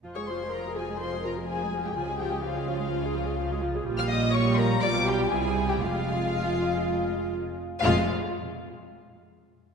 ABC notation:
X:1
M:4/4
L:1/16
Q:1/4=123
K:Fm
V:1 name="Violin section"
z d' c'2 b2 a2 c'2 b2 a3 g | a2 g2 f8- f2 z2 | z f' e'2 d'2 b2 =d'2 g2 a3 g | f12 z4 |
f2 z12 z2 |]
V:2 name="Violin section"
z d c2 B2 A2 c2 B2 A3 G | A2 G2 F8- F2 z2 | z f e2 d2 B2 =d2 G2 A3 G | F12 z4 |
F2 z12 z2 |]
V:3 name="Viola section"
[F,F] [A,A] [F,F] [A,A] [F,F] [A,A] [F,F] [A,A] [F,F] [A,A] [F,F] [A,A] [F,F] [A,A] [F,F] [A,A] | [F,F] [A,A] [F,F] [A,A] [F,F] [A,A] [F,F] [A,A] [F,F] [A,A] [F,F] [A,A] [F,F] [A,A] [F,F] [A,A] | [G,F]4 [G,F]4 [G,F]4 [G,=E]4 | [A,F]12- [A,F]2 z2 |
[A,F]2 z12 z2 |]
V:4 name="Cello section" clef=bass
F,,16 | D,16 | B,,8 =B,,4 C,4 | F,,12- F,,2 z2 |
F,,2 z12 z2 |]
V:5 name="Double bass section" clef=bass
F,,,16 | D,,16 | B,,,8 =B,,,4 C,,4 | F,,,12- F,,,2 z2 |
F,,,2 z12 z2 |]